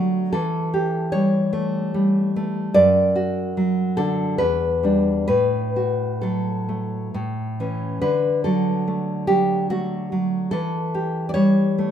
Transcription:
Already playing: D3 F#3 A3 F#4
0.33 E3 A4
0.74 G4
1.12 G3 C#5
1.53 A3
1.94 G3
2.36 A3
2.74 F#2 D5
3.16 F#4
3.57 F#3
3.97 D3 A4
4.38 E2 B4
4.83 G3 D4
5.28 A2 B4
5.76 F#4
6.21 F#3 A4
6.69 A3
7.14 A2
7.60 E3 C#4
8.02 D3 B4
8.44 F#3 A4
8.88 A3
9.27 F#3 G4
9.70 A3 F#4
10.12 F#3
10.51 E3 A4
10.94 G4
11.29 D5
11.34 G3 C#5
11.78 A3

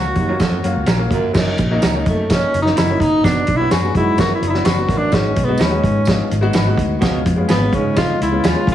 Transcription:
Already playing: C#2 F#3 A#3 C#4 F#4 F5
0.15 D#2 F#2, kick, closed hi-hat
0.29 F#3 A#3 C#4 F4
0.39 F2, kick, snare, closed hi-hat, tambourine
0.51 F#2
0.63 F#2 F#3 A#3 C#4 F4, closed hi-hat
0.76 C#2
0.86 A#1 C#4 F4 A#4, snare, closed hi-hat, tambourine
0.98 F#3 A#3 C#4 F4
1.11 G1 F#2, kick, closed hi-hat
1.33 F#1 F#2 F#3 A#3 C#4 D#4, kick, snare, crash, tambourine
1.58 A#1, kick, closed hi-hat
1.71 F#3 A#3 C#4 D#4
1.82 C#2 D#4 F#4 A#4, snare, closed hi-hat, tambourine
1.93 F#3 A#3 C#4 D#4
2.06 F#2 A3, kick, closed hi-hat
2.29 F#3 A#3 C#4 D#4, kick, snare, closed hi-hat, tambourine
2.54 F#1, closed hi-hat
2.62 F#3 A#3 C#4 D#4
2.66 snare
2.76 F#1 D#4 E4 F#4 A#4, snare, closed hi-hat, tambourine
2.90 F#3 A#3 C#4 D#4
3.00 G1 D#4, kick, closed hi-hat
3.23 F#1 B2 F#3 B3 D4 F#4, kick, snare, closed hi-hat, tambourine
3.47 B1, kick, closed hi-hat
3.57 F#3 B3 D4 E4
3.61 F#4
3.71 F#2 D4 F#4 G#4 B4, snare, closed hi-hat, tambourine
3.83 F#3 B3 D4 F#4
3.95 F#2 G#2 E4 F#4, kick, closed hi-hat
4.18 F#2 F#3 B3 D4 F4 F#4, kick, snare, closed hi-hat, tambourine
4.35 E4
4.42 F#1, closed hi-hat
4.47 D#4 E4
4.53 F#3 B3 D4 F#4, snare
4.65 F#1 D4 F#4 B4, snare, closed hi-hat, tambourine
4.78 F#3 B3 D4 F#4
4.89 A1 F#2, kick, closed hi-hat
4.98 D4
5.11 G#1 G#2 G#3 B3 C#4 D#4 F#4, kick, snare, closed hi-hat, tambourine
5.36 B1, kick, closed hi-hat
5.45 G#3 B3 D#4 F#4
5.58 D#2 C#4 D#4 F#4 B4, snare, closed hi-hat, tambourine
5.71 G#3 B3 D#4 F#4
5.84 G#2, kick, closed hi-hat
6.05 G#3 B3 D#4 F4, kick, snare, closed hi-hat, tambourine
6.31 G#1, closed hi-hat
6.41 G#3 B3 D#4 F#4
6.53 G#1 D#4 F#4 B4, snare, closed hi-hat, tambourine
6.66 G#3 B3 D#4 F#4
6.78 D2, kick, closed hi-hat
7.01 C#2 B2 G#3 B3 C#4 F4, kick, snare, closed hi-hat, tambourine
7.26 F2, kick, closed hi-hat
7.36 G#3 B3 C#4 F4
7.49 G#1 B3 C#4 F4 B4, snare, closed hi-hat, tambourine
7.60 G#3 B3 C#4 F4
7.72 G#2 C#3 C#4, kick, closed hi-hat
7.96 F2 C#3 G#3 B3 C#4 D#4 F4, kick, snare, closed hi-hat, tambourine
8.20 C#2 E4 F4, closed hi-hat
8.32 G#3 B3 C#4 F4
8.43 D#2 C#4 F4 B4, snare, closed hi-hat, tambourine
8.48 F4
8.55 G#3 B3 C#4 F4
8.67 C#2 F2, kick, closed hi-hat

